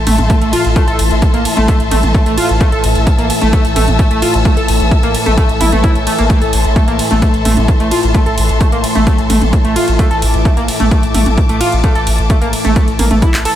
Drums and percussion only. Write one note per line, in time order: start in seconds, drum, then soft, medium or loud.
0.07 mid tom loud
0.07 open hi-hat loud
0.07 ride medium
0.18 closed hi-hat medium
0.18 mid tom medium
0.30 kick loud
0.30 closed hi-hat medium
0.41 closed hi-hat medium
0.53 open hi-hat loud
0.53 ride medium
0.65 closed hi-hat medium
0.76 kick loud
0.76 closed hi-hat medium
0.88 closed hi-hat medium
0.99 open hi-hat loud
0.99 ride medium
1.11 closed hi-hat medium
1.22 kick loud
1.22 closed hi-hat medium
1.34 closed hi-hat medium
1.45 open hi-hat loud
1.45 ride medium
1.57 closed hi-hat medium
1.57 mid tom medium
1.68 kick loud
1.68 closed hi-hat medium
1.80 closed hi-hat medium
1.91 mid tom medium
1.91 open hi-hat loud
1.91 ride medium
2.03 closed hi-hat medium
2.03 mid tom medium
2.14 kick loud
2.14 closed hi-hat medium
2.26 closed hi-hat medium
2.38 open hi-hat loud
2.38 ride medium
2.49 closed hi-hat medium
2.61 kick loud
2.61 closed hi-hat medium
2.72 closed hi-hat medium
2.84 open hi-hat loud
2.84 ride medium
2.95 closed hi-hat medium
3.07 kick loud
3.07 closed hi-hat medium
3.19 closed hi-hat medium
3.30 open hi-hat loud
3.30 ride medium
3.42 closed hi-hat medium
3.42 mid tom medium
3.53 kick loud
3.53 closed hi-hat medium
3.65 closed hi-hat medium
3.76 mid tom medium
3.76 open hi-hat loud
3.76 ride medium
3.88 closed hi-hat medium
3.88 mid tom medium
3.99 kick loud
3.99 closed hi-hat medium
4.11 closed hi-hat medium
4.22 open hi-hat loud
4.22 ride medium
4.34 closed hi-hat medium
4.45 kick loud
4.45 closed hi-hat medium
4.57 closed hi-hat medium
4.68 open hi-hat loud
4.68 ride medium
4.80 closed hi-hat medium
4.91 kick loud
4.91 closed hi-hat medium
5.03 closed hi-hat medium
5.15 open hi-hat loud
5.15 ride medium
5.26 closed hi-hat medium
5.26 mid tom medium
5.38 kick loud
5.38 closed hi-hat medium
5.49 closed hi-hat medium
5.61 mid tom loud
5.61 open hi-hat loud
5.61 ride medium
5.72 closed hi-hat medium
5.72 mid tom medium
5.84 kick loud
5.84 closed hi-hat medium
5.95 closed hi-hat medium
6.07 open hi-hat loud
6.07 ride medium
6.18 closed hi-hat medium
6.30 kick loud
6.30 closed hi-hat medium
6.42 closed hi-hat medium
6.53 open hi-hat loud
6.53 ride medium
6.65 closed hi-hat medium
6.76 kick loud
6.76 closed hi-hat medium
6.88 closed hi-hat medium
6.99 open hi-hat loud
6.99 ride medium
7.11 closed hi-hat medium
7.11 mid tom medium
7.22 kick loud
7.22 closed hi-hat medium
7.34 closed hi-hat medium
7.45 mid tom loud
7.45 open hi-hat loud
7.45 ride medium
7.57 closed hi-hat medium
7.57 mid tom medium
7.68 kick loud
7.68 closed hi-hat medium
7.80 closed hi-hat medium
7.91 open hi-hat loud
7.91 ride medium
8.03 closed hi-hat medium
8.14 kick loud
8.14 closed hi-hat medium
8.26 closed hi-hat medium
8.38 open hi-hat loud
8.38 ride medium
8.49 closed hi-hat medium
8.61 kick loud
8.61 closed hi-hat medium
8.72 closed hi-hat medium
8.84 open hi-hat loud
8.84 ride medium
8.95 closed hi-hat medium
8.95 mid tom medium
9.07 kick loud
9.07 closed hi-hat medium
9.18 closed hi-hat medium
9.30 mid tom loud
9.30 open hi-hat loud
9.30 ride medium
9.42 closed hi-hat medium
9.42 mid tom loud
9.53 kick loud
9.53 closed hi-hat medium
9.65 closed hi-hat soft
9.76 open hi-hat loud
9.76 ride medium
9.88 closed hi-hat medium
9.99 kick loud
9.99 closed hi-hat medium
10.11 closed hi-hat medium
10.22 open hi-hat loud
10.22 ride medium
10.34 closed hi-hat medium
10.45 kick loud
10.45 closed hi-hat medium
10.57 closed hi-hat medium
10.68 open hi-hat loud
10.68 ride medium
10.80 closed hi-hat medium
10.80 mid tom medium
10.91 kick loud
10.91 closed hi-hat medium
11.03 closed hi-hat medium
11.15 mid tom loud
11.15 open hi-hat loud
11.15 ride medium
11.26 closed hi-hat medium
11.26 mid tom loud
11.38 kick loud
11.38 closed hi-hat medium
11.49 closed hi-hat medium
11.61 open hi-hat loud
11.61 ride medium
11.72 closed hi-hat medium
11.84 kick loud
11.84 closed hi-hat medium
11.95 closed hi-hat medium
12.07 open hi-hat loud
12.07 ride medium
12.18 closed hi-hat medium
12.30 kick loud
12.30 closed hi-hat medium
12.42 closed hi-hat medium
12.53 open hi-hat loud
12.53 ride medium
12.65 closed hi-hat medium
12.65 mid tom medium
12.76 kick loud
12.76 closed hi-hat medium
12.88 closed hi-hat medium
12.99 mid tom loud
12.99 open hi-hat loud
12.99 ride medium
13.11 closed hi-hat medium
13.11 mid tom loud
13.22 kick loud
13.22 closed hi-hat medium
13.34 clap medium
13.34 closed hi-hat medium
13.45 open hi-hat loud
13.45 ride medium